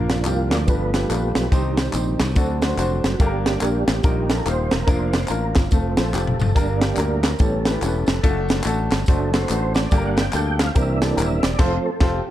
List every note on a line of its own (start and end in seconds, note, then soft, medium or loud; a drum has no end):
0.00 0.25 A#1 medium
0.00 0.48 A#2 medium
0.00 0.63 F3 medium
0.00 0.18 A#3 medium
0.00 0.63 A#3 soft
0.00 0.18 D4 medium
0.00 0.18 F4 medium
0.00 0.18 A#4 medium
0.09 0.26 D4 medium
0.09 snare loud
0.09 closed hi-hat medium
0.09 tambourine medium
0.25 0.51 C2 medium
0.25 0.60 A#3 medium
0.25 0.33 C4 soft
0.25 0.53 F4 medium
0.25 0.60 F4 medium
0.25 0.60 G4 medium
0.25 clap loud
0.25 closed hi-hat medium
0.25 tambourine medium
0.31 0.62 D4 medium
0.50 0.65 D2 medium
0.50 0.68 D5 medium
0.50 snare loud
0.50 clap medium
0.50 closed hi-hat medium
0.50 tambourine medium
0.66 1.04 G1 medium
0.66 1.33 G2 medium
0.66 1.48 F3 soft
0.66 1.48 A3 soft
0.66 1.48 B3 medium
0.66 0.87 D4 medium
0.66 0.88 F4 medium
0.66 0.88 G4 medium
0.66 0.96 B4 loud
0.66 0.88 B4 medium
0.66 kick loud
0.66 closed hi-hat medium
0.66 tambourine medium
0.94 1.06 D4 medium
0.94 1.06 F4 medium
0.94 1.06 G4 medium
0.94 1.21 G4 medium
0.94 1.06 B4 medium
0.94 snare loud
0.94 closed hi-hat medium
0.94 tambourine medium
1.09 1.32 A#1 medium
1.09 1.43 D4 medium
1.09 1.43 F4 medium
1.09 1.43 G4 medium
1.09 1.16 A#4 medium
1.09 clap medium
1.09 closed hi-hat medium
1.09 tambourine medium
1.15 1.46 B4 medium
1.22 1.52 G4 medium
1.35 1.50 B1 medium
1.35 snare loud
1.35 closed hi-hat medium
1.35 tambourine medium
1.50 1.88 C2 medium
1.50 2.16 C3 medium
1.50 2.31 D#3 medium
1.50 2.32 G3 soft
1.50 2.32 C4 medium
1.50 1.85 C4 medium
1.50 1.86 D#4 medium
1.50 1.86 G4 medium
1.50 1.86 C5 loud
1.50 kick loud
1.50 closed hi-hat medium
1.50 tambourine medium
1.77 snare loud
1.77 closed hi-hat medium
1.77 tambourine medium
1.93 2.16 A#1 medium
1.93 2.28 C4 medium
1.93 2.28 D#4 medium
1.93 2.28 G4 medium
1.93 2.28 C5 medium
1.93 clap loud
1.93 closed hi-hat medium
1.93 tambourine medium
2.20 2.36 C2 medium
2.20 snare loud
2.20 clap medium
2.20 closed hi-hat medium
2.20 tambourine medium
2.34 2.72 D2 loud
2.34 3.01 D3 medium
2.34 3.15 F#3 medium
2.34 3.15 A3 soft
2.34 3.16 C4 medium
2.34 2.55 C4 medium
2.34 2.55 D4 medium
2.34 2.56 F#4 medium
2.34 2.56 A4 medium
2.34 kick loud
2.34 closed hi-hat medium
2.34 tambourine medium
2.62 2.74 C4 medium
2.62 2.74 D4 medium
2.62 2.74 F#4 medium
2.62 2.74 C5 medium
2.62 snare loud
2.62 closed hi-hat medium
2.62 tambourine medium
2.77 3.00 F1 loud
2.77 3.12 C4 medium
2.77 3.12 D4 medium
2.77 3.12 F#4 medium
2.77 3.12 C5 loud
2.77 clap medium
2.77 closed hi-hat medium
2.77 tambourine medium
3.04 3.18 F#1 medium
3.04 snare loud
3.04 closed hi-hat medium
3.04 tambourine medium
3.14 3.84 G3 medium
3.14 3.20 F#4 medium
3.19 3.56 G1 medium
3.19 3.85 G2 medium
3.19 3.84 A#3 medium
3.19 3.54 A#3 loud
3.19 3.84 D4 medium
3.19 3.54 D4 medium
3.19 4.04 G4 medium
3.19 3.54 G4 medium
3.19 3.27 A4 medium
3.19 kick loud
3.19 closed hi-hat medium
3.19 tambourine medium
3.27 3.57 A#4 loud
3.46 snare loud
3.46 closed hi-hat medium
3.46 tambourine medium
3.61 3.84 A#1 medium
3.61 3.95 A#3 medium
3.61 3.95 D4 medium
3.61 3.96 G4 medium
3.61 3.95 A#4 medium
3.61 clap loud
3.61 closed hi-hat medium
3.61 tambourine loud
3.88 4.01 A1 medium
3.88 snare loud
3.88 clap medium
3.88 closed hi-hat medium
3.88 tambourine medium
4.03 4.40 A#1 loud
4.03 4.68 A#2 medium
4.03 4.34 G3 medium
4.03 4.35 A#3 soft
4.03 4.23 A#3 medium
4.03 4.23 D#4 medium
4.03 4.35 D#4 medium
4.03 4.23 G4 medium
4.03 4.32 G4 medium
4.03 4.23 A#4 medium
4.03 kick loud
4.03 closed hi-hat medium
4.03 tambourine medium
4.30 4.42 A#3 medium
4.30 4.42 D#4 medium
4.30 4.42 G4 medium
4.30 4.42 A4 medium
4.30 4.46 A#4 loud
4.30 snare loud
4.30 closed hi-hat medium
4.30 tambourine medium
4.46 4.68 D#1 loud
4.46 4.79 A#3 medium
4.46 4.79 D#4 medium
4.46 4.79 G4 medium
4.46 4.53 A#4 medium
4.46 4.73 C5 loud
4.46 clap medium
4.46 closed hi-hat medium
4.46 tambourine medium
4.52 4.82 C5 medium
4.71 4.86 E1 medium
4.71 4.88 A#4 loud
4.71 snare loud
4.71 closed hi-hat medium
4.71 tambourine medium
4.87 5.23 F1 medium
4.87 5.18 F3 medium
4.87 5.18 A#3 soft
4.87 5.21 A#3 medium
4.87 5.21 D4 medium
4.87 5.18 D4 medium
4.87 5.21 F4 medium
4.87 5.21 A#4 loud
4.87 5.31 C5 medium
4.87 kick loud
4.87 closed hi-hat medium
4.87 tambourine medium
5.13 snare loud
5.13 closed hi-hat medium
5.13 tambourine medium
5.28 5.52 A1 medium
5.28 5.64 A#3 medium
5.28 5.64 D4 medium
5.28 5.63 F4 medium
5.28 5.64 A#4 medium
5.28 5.57 A#4 medium
5.28 clap loud
5.28 closed hi-hat medium
5.28 tambourine loud
5.55 5.70 G1 medium
5.55 5.71 F4 medium
5.55 kick loud
5.55 snare loud
5.55 clap medium
5.55 closed hi-hat medium
5.55 tambourine medium
5.70 5.94 F1 medium
5.70 6.02 F3 medium
5.70 6.02 A3 soft
5.70 5.91 A3 medium
5.70 6.03 C4 medium
5.70 5.91 C4 medium
5.70 5.92 F4 medium
5.70 5.92 A4 medium
5.70 kick loud
5.70 closed hi-hat medium
5.70 tambourine medium
5.97 6.11 A#1 medium
5.97 6.10 A3 medium
5.97 6.10 C4 medium
5.97 6.10 F4 medium
5.97 6.38 A4 loud
5.97 6.10 C5 medium
5.97 snare loud
5.97 closed hi-hat medium
5.97 tambourine medium
6.13 6.36 F1 medium
6.13 6.47 A3 medium
6.13 6.48 C4 medium
6.13 6.48 F4 medium
6.13 6.48 G4 medium
6.13 snare medium
6.13 clap medium
6.13 tambourine medium
6.27 mid tom medium
6.39 6.53 F#1 medium
6.39 6.56 A4 medium
6.39 floor tom loud
6.39 tambourine medium
6.54 6.91 G1 medium
6.54 7.20 G2 medium
6.54 7.20 G3 medium
6.54 7.20 A#3 medium
6.54 6.89 A#3 medium
6.54 6.89 D4 medium
6.54 7.21 D4 medium
6.54 6.89 G4 medium
6.54 6.80 A#4 loud
6.54 6.90 A#4 loud
6.54 kick loud
6.54 closed hi-hat medium
6.54 tambourine medium
6.81 6.99 G4 loud
6.81 snare loud
6.81 closed hi-hat medium
6.81 tambourine medium
6.97 7.33 D2 medium
6.97 7.31 A#3 medium
6.97 7.31 D4 medium
6.97 7.31 G4 medium
6.97 7.23 A#4 medium
6.97 7.32 A#4 medium
6.97 clap loud
6.97 closed hi-hat medium
6.97 tambourine loud
7.24 7.40 A#4 medium
7.24 snare loud
7.24 clap medium
7.24 closed hi-hat medium
7.24 tambourine medium
7.39 7.75 A1 loud
7.39 8.04 A2 medium
7.39 7.71 G3 medium
7.39 7.71 B3 medium
7.39 7.59 C#4 medium
7.39 7.72 C#4 medium
7.39 7.59 E4 medium
7.39 7.59 G4 medium
7.39 7.59 A4 medium
7.39 8.46 A4 medium
7.39 kick loud
7.39 closed hi-hat medium
7.39 tambourine medium
7.65 7.78 C#4 medium
7.65 7.78 E4 medium
7.65 7.78 G4 medium
7.65 7.78 B4 medium
7.65 snare loud
7.65 closed hi-hat medium
7.65 tambourine medium
7.82 8.04 E1 medium
7.82 8.15 C#4 medium
7.82 8.15 E4 medium
7.82 8.15 G4 medium
7.82 7.88 A4 medium
7.82 clap medium
7.82 closed hi-hat medium
7.82 tambourine medium
7.88 8.18 B4 medium
8.06 8.21 F1 medium
8.06 snare loud
8.06 closed hi-hat medium
8.06 tambourine medium
8.23 8.60 F#1 medium
8.23 8.54 F#3 medium
8.23 8.57 A3 loud
8.23 8.55 A3 soft
8.23 8.57 D4 loud
8.23 8.55 D4 medium
8.23 8.30 F4 medium
8.23 8.57 A4 loud
8.23 kick loud
8.23 closed hi-hat medium
8.23 tambourine medium
8.28 8.59 F#4 medium
8.49 snare loud
8.49 closed hi-hat medium
8.49 tambourine medium
8.64 8.88 A1 medium
8.64 8.99 A3 medium
8.64 8.99 D4 medium
8.64 8.99 F#4 medium
8.64 8.99 A4 loud
8.64 clap loud
8.64 closed hi-hat medium
8.64 tambourine loud
8.91 9.05 G1 medium
8.91 snare loud
8.91 clap medium
8.91 closed hi-hat medium
8.91 tambourine medium
9.06 9.44 F#1 loud
9.06 9.31 F#3 soft
9.06 9.27 A3 medium
9.06 9.31 A3 soft
9.06 9.27 D4 medium
9.06 9.32 D4 medium
9.06 9.27 F#4 medium
9.06 9.35 A4 medium
9.06 9.27 C5 medium
9.06 kick loud
9.06 closed hi-hat medium
9.06 tambourine medium
9.33 9.46 A3 medium
9.33 9.46 D4 medium
9.33 9.46 F#4 medium
9.33 9.46 A4 medium
9.33 9.73 C5 loud
9.33 snare loud
9.33 closed hi-hat medium
9.33 tambourine medium
9.49 9.86 A1 loud
9.49 9.83 A3 medium
9.49 9.83 D4 medium
9.49 9.84 F#4 medium
9.49 9.56 B4 medium
9.49 clap medium
9.49 closed hi-hat loud
9.49 tambourine medium
9.56 9.86 C5 medium
9.74 10.06 D5 loud
9.74 snare loud
9.74 closed hi-hat medium
9.74 tambourine medium
9.91 10.27 G1 loud
9.91 10.56 G2 medium
9.91 10.22 G3 medium
9.91 10.22 A#3 medium
9.91 10.25 A#3 loud
9.91 10.22 D4 medium
9.91 10.25 D4 medium
9.91 10.25 G4 medium
9.91 9.98 A4 medium
9.91 kick loud
9.91 closed hi-hat medium
9.91 tambourine medium
9.97 10.28 A#4 loud
10.06 10.18 F#5 medium
10.17 10.61 G5 loud
10.17 snare loud
10.17 closed hi-hat medium
10.17 tambourine medium
10.33 10.69 D2 medium
10.33 10.67 A#3 medium
10.33 10.67 D4 medium
10.33 10.67 G4 medium
10.33 10.67 A4 medium
10.33 clap loud
10.33 closed hi-hat medium
10.33 tambourine loud
10.59 10.74 F5 loud
10.59 snare loud
10.59 clap medium
10.59 closed hi-hat medium
10.59 tambourine medium
10.75 11.11 C2 loud
10.75 11.40 C3 medium
10.75 11.40 E3 medium
10.75 11.40 A#3 medium
10.75 10.94 C4 medium
10.75 11.40 D4 medium
10.75 10.94 E4 medium
10.75 10.94 G4 medium
10.75 10.95 A#4 medium
10.75 11.03 E5 loud
10.75 kick loud
10.75 closed hi-hat medium
10.75 tambourine medium
11.02 11.13 C4 medium
11.02 11.13 E4 medium
11.02 11.13 G4 medium
11.02 11.13 A4 medium
11.02 11.09 D5 loud
11.02 snare loud
11.02 closed hi-hat medium
11.02 tambourine medium
11.16 11.40 D#1 loud
11.16 11.50 C4 medium
11.16 11.50 E4 medium
11.16 11.50 G4 medium
11.16 11.51 A#4 medium
11.16 11.45 E5 loud
11.16 clap loud
11.16 closed hi-hat medium
11.16 tambourine loud
11.43 11.57 E1 medium
11.43 11.60 D5 loud
11.43 snare loud
11.43 closed hi-hat medium
11.43 tambourine medium
11.59 11.77 F1 loud
11.59 11.90 F3 medium
11.59 11.90 A3 medium
11.59 11.77 C4 loud
11.59 11.91 C4 medium
11.59 11.77 F4 loud
11.59 11.77 A4 loud
11.59 11.77 C5 loud
11.59 11.87 C5 loud
11.59 kick loud
11.59 snare loud
11.59 crash medium
11.85 12.02 A4 loud
12.01 12.19 F1 loud
12.01 12.19 C4 loud
12.01 12.19 F4 loud
12.01 12.29 G4 medium
12.01 12.19 A4 loud
12.01 12.19 C5 loud
12.01 kick loud
12.01 snare loud